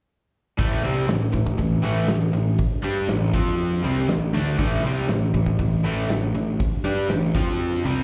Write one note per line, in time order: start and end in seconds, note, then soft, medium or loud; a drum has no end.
0.58 0.82 A1 medium
0.58 0.83 A2 medium
0.58 0.83 E3 loud
0.58 0.83 A3 loud
0.58 kick loud
0.58 open hi-hat medium
0.83 1.07 C2 medium
0.83 1.08 C3 medium
0.83 1.07 G3 medium
0.83 1.09 C4 medium
0.83 open hi-hat medium
1.08 1.32 A1 medium
1.08 1.29 A2 medium
1.08 1.28 E3 medium
1.08 snare loud
1.08 open hi-hat medium
1.33 1.57 A1 medium
1.33 1.54 A2 medium
1.33 1.54 E3 medium
1.33 kick medium
1.33 open hi-hat medium
1.46 kick medium
1.58 1.82 A1 medium
1.58 1.79 A2 medium
1.58 1.79 E3 medium
1.58 kick medium
1.58 open hi-hat medium
1.83 2.07 A1 medium
1.83 2.07 A2 medium
1.83 2.07 E3 medium
1.83 2.08 A3 medium
1.83 open hi-hat medium
2.08 2.32 A1 medium
2.08 2.29 A2 medium
2.08 2.29 E3 medium
2.08 snare loud
2.08 open hi-hat medium
2.33 2.57 A1 medium
2.33 2.54 A2 medium
2.33 2.54 E3 medium
2.33 open hi-hat medium
2.58 kick loud
2.58 open hi-hat medium
2.83 3.07 G2 medium
2.83 3.08 G3 medium
2.83 3.08 D4 loud
2.83 3.09 G4 loud
2.83 open hi-hat medium
3.09 3.32 A1 medium
3.09 3.29 A2 medium
3.09 3.29 E3 medium
3.09 snare loud
3.09 open hi-hat medium
3.33 3.80 F2 medium
3.33 3.83 F3 medium
3.33 3.84 C4 loud
3.33 3.84 F4 medium
3.33 kick loud
3.33 open hi-hat soft
3.58 open hi-hat medium
3.83 4.08 C2 medium
3.83 4.08 C3 medium
3.83 4.08 G3 medium
3.83 4.09 C4 loud
3.83 open hi-hat medium
4.08 4.32 A1 medium
4.08 4.29 A2 medium
4.08 4.29 E3 medium
4.08 snare loud
4.08 open hi-hat medium
4.33 4.57 D2 medium
4.33 4.58 D3 medium
4.33 4.58 A3 medium
4.33 4.59 D4 loud
4.33 open hi-hat soft
4.58 4.82 A1 medium
4.58 4.83 A2 medium
4.58 4.84 E3 medium
4.58 4.84 A3 loud
4.58 kick loud
4.58 open hi-hat medium
4.83 5.07 C2 loud
4.83 5.08 C3 medium
4.83 5.09 G3 medium
4.83 5.09 C4 medium
4.83 open hi-hat medium
5.09 5.32 A1 medium
5.09 5.30 A2 medium
5.09 5.30 E3 medium
5.09 snare loud
5.09 open hi-hat medium
5.34 5.58 A1 medium
5.34 5.54 A2 medium
5.34 5.54 E3 medium
5.34 kick medium
5.34 open hi-hat medium
5.46 kick medium
5.59 5.82 A1 medium
5.59 5.79 A2 medium
5.59 5.80 E3 medium
5.59 kick loud
5.59 open hi-hat medium
5.83 6.07 A1 medium
5.83 6.08 A2 medium
5.83 6.09 E3 medium
5.83 6.09 A3 loud
5.83 open hi-hat medium
6.08 6.32 A1 medium
6.08 6.29 A2 medium
6.08 6.30 E3 medium
6.08 snare loud
6.08 open hi-hat medium
6.34 6.58 A1 medium
6.34 6.55 A2 medium
6.34 6.55 E3 medium
6.34 open hi-hat medium
6.60 kick loud
6.60 open hi-hat medium
6.84 7.08 G2 loud
6.84 7.09 G3 medium
6.84 7.09 D4 medium
6.84 7.10 G4 medium
6.84 open hi-hat medium
7.09 7.32 A1 medium
7.09 7.30 A2 medium
7.09 7.30 E3 medium
7.09 snare loud
7.09 open hi-hat medium
7.35 7.81 F2 medium
7.35 7.84 F3 medium
7.35 7.85 C4 medium
7.35 7.85 F4 loud
7.35 kick medium
7.35 open hi-hat soft
7.59 open hi-hat medium
7.84 8.03 C2 medium
7.84 8.03 C3 medium
7.84 8.03 G3 loud
7.84 8.03 C4 medium
7.84 open hi-hat medium